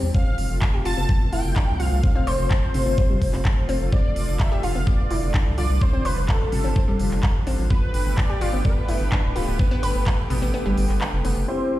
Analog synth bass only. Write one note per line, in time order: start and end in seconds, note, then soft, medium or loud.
0.03 0.11 E2 medium
0.26 0.35 F1 medium
0.38 0.47 F1 loud
0.50 0.59 F1 medium
0.74 0.82 F1 medium
0.86 0.94 F1 loud
0.97 1.06 F1 medium
1.21 1.29 F1 medium
1.33 1.41 F1 loud
1.45 1.53 F1 loud
1.68 1.77 C2 medium
1.80 1.88 C2 loud
1.92 2.00 C2 medium
2.15 2.24 F1 medium
2.27 2.36 F1 medium
2.39 2.47 F1 medium
2.63 2.71 G1 medium
2.74 2.83 G1 loud
2.86 2.95 G1 medium
3.10 3.18 F1 medium
3.22 3.30 F1 loud
3.33 3.42 F1 medium
3.57 3.66 F1 medium
3.69 3.77 F1 loud
3.81 3.89 F1 medium
4.04 4.13 F1 medium
4.16 4.25 F1 loud
4.28 4.36 F1 loud
4.52 4.60 F1 medium
4.63 4.72 F1 loud
4.75 4.84 F1 medium
4.99 5.07 F1 medium
5.10 5.19 F1 loud
5.22 5.31 F1 medium
5.46 5.55 C2 medium
5.58 5.66 C2 loud
5.70 5.78 C2 medium
5.93 6.02 F1 medium
6.05 6.14 F1 loud
6.17 6.25 F1 medium
6.41 6.49 G1 medium
6.52 6.61 G1 loud
6.64 6.73 G1 medium
6.88 6.96 F1 medium
6.99 7.08 F1 loud
7.11 7.20 F1 medium
7.35 7.43 A1 medium
7.47 7.55 A1 loud
7.59 7.67 A1 medium
7.82 7.91 G1 medium
7.94 8.03 G1 loud
8.06 8.14 G1 loud
8.30 8.38 G1 medium
8.41 8.50 G1 loud
8.53 8.62 G1 medium
8.77 8.85 G1 medium
8.89 8.97 G1 loud
9.00 9.09 G1 medium
9.24 9.33 D1 medium
9.36 9.44 D1 medium
9.48 9.56 D1 loud
9.71 9.80 G1 medium
9.83 9.92 G1 medium
9.95 10.03 G1 medium
10.19 10.27 A1 medium
10.30 10.39 A1 loud
10.42 10.51 A1 medium
10.66 10.74 G1 medium
10.78 10.86 G1 loud
10.89 10.98 G1 medium
11.13 11.21 F1 medium
11.25 11.33 F1 loud
11.37 11.45 F1 medium